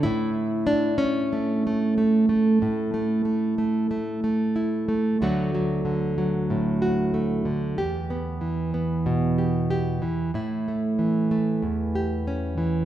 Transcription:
0, 0, Header, 1, 2, 480
1, 0, Start_track
1, 0, Key_signature, 2, "major"
1, 0, Tempo, 644468
1, 39, Time_signature, 4, 2, 24, 8
1, 5799, Tempo, 638978
1, 9603, End_track
2, 0, Start_track
2, 0, Title_t, "Nylon-string guitar"
2, 0, Program_c, 0, 24
2, 24, Note_on_c, 0, 64, 110
2, 36, Note_on_c, 0, 45, 77
2, 496, Note_on_c, 0, 62, 94
2, 727, Note_off_c, 0, 64, 0
2, 730, Note_on_c, 0, 61, 93
2, 745, Note_off_c, 0, 62, 0
2, 988, Note_on_c, 0, 57, 48
2, 1239, Note_off_c, 0, 57, 0
2, 1242, Note_on_c, 0, 57, 52
2, 1470, Note_off_c, 0, 57, 0
2, 1473, Note_on_c, 0, 57, 46
2, 1704, Note_off_c, 0, 57, 0
2, 1707, Note_on_c, 0, 57, 63
2, 1943, Note_off_c, 0, 45, 0
2, 1952, Note_on_c, 0, 45, 72
2, 2186, Note_off_c, 0, 57, 0
2, 2189, Note_on_c, 0, 57, 46
2, 2413, Note_off_c, 0, 57, 0
2, 2422, Note_on_c, 0, 57, 48
2, 2660, Note_off_c, 0, 57, 0
2, 2669, Note_on_c, 0, 57, 47
2, 2902, Note_off_c, 0, 57, 0
2, 2911, Note_on_c, 0, 57, 44
2, 3148, Note_off_c, 0, 57, 0
2, 3157, Note_on_c, 0, 57, 49
2, 3391, Note_off_c, 0, 61, 0
2, 3394, Note_on_c, 0, 64, 52
2, 3629, Note_off_c, 0, 57, 0
2, 3638, Note_on_c, 0, 57, 57
2, 3850, Note_off_c, 0, 57, 0
2, 3850, Note_off_c, 0, 64, 0
2, 3878, Note_on_c, 0, 38, 57
2, 3880, Note_off_c, 0, 45, 0
2, 3886, Note_on_c, 0, 50, 57
2, 3890, Note_on_c, 0, 54, 55
2, 3892, Note_on_c, 0, 57, 53
2, 3899, Note_on_c, 0, 66, 57
2, 4122, Note_off_c, 0, 54, 0
2, 4131, Note_on_c, 0, 54, 49
2, 4349, Note_off_c, 0, 50, 0
2, 4358, Note_on_c, 0, 50, 53
2, 4594, Note_off_c, 0, 54, 0
2, 4602, Note_on_c, 0, 54, 51
2, 4843, Note_on_c, 0, 45, 53
2, 5070, Note_off_c, 0, 66, 0
2, 5079, Note_on_c, 0, 66, 56
2, 5309, Note_off_c, 0, 57, 0
2, 5318, Note_on_c, 0, 57, 59
2, 5542, Note_off_c, 0, 50, 0
2, 5551, Note_on_c, 0, 50, 56
2, 5562, Note_off_c, 0, 45, 0
2, 5771, Note_off_c, 0, 66, 0
2, 5792, Note_off_c, 0, 38, 0
2, 5795, Note_on_c, 0, 40, 64
2, 5795, Note_on_c, 0, 67, 60
2, 5796, Note_off_c, 0, 50, 0
2, 5799, Note_off_c, 0, 57, 0
2, 5802, Note_off_c, 0, 54, 0
2, 6037, Note_on_c, 0, 59, 46
2, 6269, Note_on_c, 0, 52, 55
2, 6507, Note_off_c, 0, 59, 0
2, 6516, Note_on_c, 0, 59, 51
2, 6757, Note_on_c, 0, 47, 61
2, 6990, Note_off_c, 0, 67, 0
2, 6999, Note_on_c, 0, 67, 54
2, 7231, Note_off_c, 0, 67, 0
2, 7240, Note_on_c, 0, 67, 59
2, 7467, Note_off_c, 0, 52, 0
2, 7476, Note_on_c, 0, 52, 57
2, 7480, Note_off_c, 0, 47, 0
2, 7690, Note_off_c, 0, 59, 0
2, 7691, Note_off_c, 0, 40, 0
2, 7691, Note_off_c, 0, 52, 0
2, 7693, Note_off_c, 0, 67, 0
2, 7720, Note_on_c, 0, 45, 64
2, 7725, Note_on_c, 0, 64, 54
2, 7974, Note_on_c, 0, 57, 46
2, 8204, Note_on_c, 0, 52, 50
2, 8445, Note_off_c, 0, 57, 0
2, 8448, Note_on_c, 0, 57, 53
2, 8681, Note_off_c, 0, 45, 0
2, 8682, Note_on_c, 0, 40, 58
2, 8923, Note_off_c, 0, 64, 0
2, 8930, Note_on_c, 0, 67, 54
2, 9171, Note_on_c, 0, 61, 55
2, 9388, Note_off_c, 0, 52, 0
2, 9397, Note_on_c, 0, 52, 61
2, 9603, Note_off_c, 0, 40, 0
2, 9603, Note_off_c, 0, 52, 0
2, 9603, Note_off_c, 0, 57, 0
2, 9603, Note_off_c, 0, 61, 0
2, 9603, Note_off_c, 0, 67, 0
2, 9603, End_track
0, 0, End_of_file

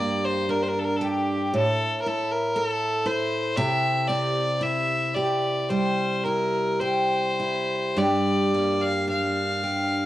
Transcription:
0, 0, Header, 1, 3, 480
1, 0, Start_track
1, 0, Tempo, 1032702
1, 1665, Time_signature, 4, 2, 24, 8
1, 2146, Tempo, 1075269
1, 2626, Tempo, 1119403
1, 4498, End_track
2, 0, Start_track
2, 0, Title_t, "Fiddle"
2, 0, Program_c, 0, 110
2, 0, Note_on_c, 0, 74, 77
2, 114, Note_on_c, 0, 72, 77
2, 121, Note_off_c, 0, 74, 0
2, 231, Note_on_c, 0, 70, 73
2, 238, Note_off_c, 0, 72, 0
2, 290, Note_on_c, 0, 72, 50
2, 297, Note_off_c, 0, 70, 0
2, 316, Note_on_c, 0, 70, 73
2, 323, Note_off_c, 0, 72, 0
2, 366, Note_on_c, 0, 69, 47
2, 373, Note_off_c, 0, 70, 0
2, 391, Note_on_c, 0, 70, 67
2, 398, Note_off_c, 0, 69, 0
2, 447, Note_on_c, 0, 69, 45
2, 454, Note_off_c, 0, 70, 0
2, 486, Note_on_c, 0, 67, 60
2, 493, Note_off_c, 0, 69, 0
2, 720, Note_off_c, 0, 67, 0
2, 728, Note_on_c, 0, 69, 79
2, 917, Note_off_c, 0, 69, 0
2, 937, Note_on_c, 0, 70, 55
2, 964, Note_on_c, 0, 69, 69
2, 971, Note_off_c, 0, 70, 0
2, 1076, Note_on_c, 0, 70, 63
2, 1083, Note_off_c, 0, 69, 0
2, 1190, Note_on_c, 0, 69, 79
2, 1197, Note_off_c, 0, 70, 0
2, 1423, Note_on_c, 0, 72, 70
2, 1430, Note_off_c, 0, 69, 0
2, 1657, Note_on_c, 0, 76, 85
2, 1664, Note_off_c, 0, 72, 0
2, 1897, Note_on_c, 0, 74, 73
2, 1904, Note_off_c, 0, 76, 0
2, 2150, Note_on_c, 0, 76, 73
2, 2156, Note_off_c, 0, 74, 0
2, 2382, Note_on_c, 0, 74, 62
2, 2389, Note_off_c, 0, 76, 0
2, 2627, Note_on_c, 0, 72, 70
2, 2633, Note_off_c, 0, 74, 0
2, 2859, Note_on_c, 0, 70, 66
2, 2865, Note_off_c, 0, 72, 0
2, 3101, Note_on_c, 0, 72, 66
2, 3107, Note_off_c, 0, 70, 0
2, 3606, Note_on_c, 0, 74, 69
2, 3613, Note_off_c, 0, 72, 0
2, 3966, Note_on_c, 0, 77, 77
2, 3972, Note_off_c, 0, 74, 0
2, 4079, Note_off_c, 0, 77, 0
2, 4084, Note_on_c, 0, 77, 72
2, 4498, Note_off_c, 0, 77, 0
2, 4498, End_track
3, 0, Start_track
3, 0, Title_t, "Steel-string acoustic guitar"
3, 0, Program_c, 1, 25
3, 0, Note_on_c, 1, 43, 68
3, 0, Note_on_c, 1, 58, 45
3, 0, Note_on_c, 1, 67, 58
3, 227, Note_on_c, 1, 62, 49
3, 464, Note_off_c, 1, 67, 0
3, 469, Note_on_c, 1, 67, 54
3, 710, Note_off_c, 1, 43, 0
3, 713, Note_on_c, 1, 45, 59
3, 760, Note_off_c, 1, 62, 0
3, 760, Note_off_c, 1, 67, 0
3, 761, Note_off_c, 1, 58, 0
3, 958, Note_on_c, 1, 64, 42
3, 1189, Note_on_c, 1, 69, 54
3, 1419, Note_off_c, 1, 64, 0
3, 1421, Note_on_c, 1, 64, 49
3, 1660, Note_on_c, 1, 48, 67
3, 1663, Note_off_c, 1, 69, 0
3, 1665, Note_on_c, 1, 67, 57
3, 1714, Note_off_c, 1, 45, 0
3, 1902, Note_on_c, 1, 60, 44
3, 2141, Note_off_c, 1, 64, 0
3, 2143, Note_on_c, 1, 64, 47
3, 2388, Note_off_c, 1, 67, 0
3, 2390, Note_on_c, 1, 67, 42
3, 2630, Note_on_c, 1, 55, 44
3, 2862, Note_off_c, 1, 64, 0
3, 2868, Note_on_c, 1, 64, 38
3, 3104, Note_off_c, 1, 67, 0
3, 3105, Note_on_c, 1, 67, 45
3, 3351, Note_off_c, 1, 64, 0
3, 3356, Note_on_c, 1, 64, 40
3, 3594, Note_off_c, 1, 48, 0
3, 3601, Note_on_c, 1, 43, 60
3, 3604, Note_off_c, 1, 67, 0
3, 3605, Note_on_c, 1, 67, 50
3, 3644, Note_off_c, 1, 60, 0
3, 3647, Note_off_c, 1, 64, 0
3, 3849, Note_on_c, 1, 58, 40
3, 4077, Note_on_c, 1, 62, 43
3, 4131, Note_off_c, 1, 55, 0
3, 4312, Note_off_c, 1, 67, 0
3, 4317, Note_on_c, 1, 67, 44
3, 4498, Note_off_c, 1, 43, 0
3, 4498, Note_off_c, 1, 58, 0
3, 4498, Note_off_c, 1, 62, 0
3, 4498, Note_off_c, 1, 67, 0
3, 4498, End_track
0, 0, End_of_file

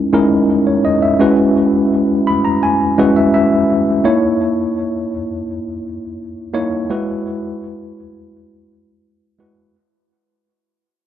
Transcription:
0, 0, Header, 1, 2, 480
1, 0, Start_track
1, 0, Tempo, 712589
1, 808, Time_signature, 4, 2, 24, 8
1, 7455, End_track
2, 0, Start_track
2, 0, Title_t, "Tine electric piano"
2, 0, Program_c, 0, 4
2, 0, Control_c, 0, 64, 127
2, 0, Note_on_c, 0, 56, 86
2, 0, Note_on_c, 0, 61, 80
2, 0, Note_on_c, 0, 63, 79
2, 0, Note_on_c, 0, 64, 83
2, 0, Note_on_c, 0, 70, 95
2, 86, Note_off_c, 0, 56, 0
2, 86, Note_on_c, 0, 56, 90
2, 89, Note_off_c, 0, 63, 0
2, 89, Note_on_c, 0, 63, 86
2, 90, Note_off_c, 0, 61, 0
2, 90, Note_on_c, 0, 61, 80
2, 92, Note_off_c, 0, 64, 0
2, 92, Note_on_c, 0, 64, 84
2, 95, Note_off_c, 0, 70, 0
2, 95, Note_on_c, 0, 70, 98
2, 450, Note_on_c, 0, 73, 66
2, 563, Note_off_c, 0, 73, 0
2, 571, Note_on_c, 0, 75, 75
2, 641, Note_off_c, 0, 56, 0
2, 642, Note_off_c, 0, 61, 0
2, 642, Note_off_c, 0, 63, 0
2, 643, Note_off_c, 0, 64, 0
2, 645, Note_off_c, 0, 70, 0
2, 683, Note_off_c, 0, 75, 0
2, 689, Note_on_c, 0, 76, 65
2, 805, Note_on_c, 0, 56, 88
2, 807, Note_on_c, 0, 61, 82
2, 812, Note_on_c, 0, 64, 84
2, 812, Note_on_c, 0, 66, 79
2, 814, Note_on_c, 0, 71, 101
2, 816, Control_c, 0, 64, 0
2, 916, Note_off_c, 0, 76, 0
2, 933, Control_c, 0, 64, 127
2, 1530, Note_on_c, 0, 83, 72
2, 1544, Note_off_c, 0, 56, 0
2, 1545, Note_off_c, 0, 61, 0
2, 1548, Note_off_c, 0, 64, 0
2, 1548, Note_off_c, 0, 66, 0
2, 1549, Note_off_c, 0, 71, 0
2, 1640, Note_off_c, 0, 83, 0
2, 1648, Note_on_c, 0, 82, 73
2, 1759, Note_off_c, 0, 82, 0
2, 1771, Note_on_c, 0, 80, 78
2, 2008, Note_on_c, 0, 61, 84
2, 2009, Note_on_c, 0, 56, 95
2, 2013, Note_on_c, 0, 64, 79
2, 2013, Note_on_c, 0, 66, 79
2, 2017, Note_on_c, 0, 71, 100
2, 2103, Note_off_c, 0, 80, 0
2, 2131, Note_on_c, 0, 76, 69
2, 2240, Note_off_c, 0, 76, 0
2, 2249, Note_on_c, 0, 76, 73
2, 2561, Note_off_c, 0, 56, 0
2, 2561, Note_off_c, 0, 61, 0
2, 2563, Note_off_c, 0, 64, 0
2, 2563, Note_off_c, 0, 66, 0
2, 2565, Note_off_c, 0, 71, 0
2, 2700, Note_off_c, 0, 76, 0
2, 2722, Note_on_c, 0, 58, 78
2, 2724, Note_on_c, 0, 63, 72
2, 2726, Note_on_c, 0, 64, 77
2, 2729, Note_on_c, 0, 73, 89
2, 2735, Control_c, 0, 64, 0
2, 2842, Control_c, 0, 64, 127
2, 3462, Note_off_c, 0, 58, 0
2, 3463, Note_off_c, 0, 63, 0
2, 3464, Note_off_c, 0, 64, 0
2, 3466, Note_off_c, 0, 73, 0
2, 4401, Note_on_c, 0, 58, 87
2, 4404, Note_on_c, 0, 63, 81
2, 4405, Note_on_c, 0, 64, 76
2, 4409, Note_on_c, 0, 73, 98
2, 4588, Note_off_c, 0, 58, 0
2, 4589, Note_off_c, 0, 63, 0
2, 4590, Note_off_c, 0, 64, 0
2, 4592, Note_off_c, 0, 73, 0
2, 4645, Note_on_c, 0, 56, 84
2, 4649, Note_on_c, 0, 64, 79
2, 4650, Note_on_c, 0, 66, 79
2, 4652, Note_on_c, 0, 71, 93
2, 4655, Control_c, 0, 64, 0
2, 4775, Control_c, 0, 64, 127
2, 5385, Note_off_c, 0, 56, 0
2, 5387, Note_off_c, 0, 64, 0
2, 5387, Note_off_c, 0, 66, 0
2, 5388, Note_off_c, 0, 71, 0
2, 6324, Note_on_c, 0, 56, 76
2, 6329, Note_on_c, 0, 64, 75
2, 6330, Note_on_c, 0, 66, 73
2, 6332, Note_on_c, 0, 71, 83
2, 6510, Note_off_c, 0, 56, 0
2, 6513, Note_off_c, 0, 64, 0
2, 6513, Note_off_c, 0, 66, 0
2, 6514, Note_off_c, 0, 71, 0
2, 6576, Control_c, 0, 64, 0
2, 7455, End_track
0, 0, End_of_file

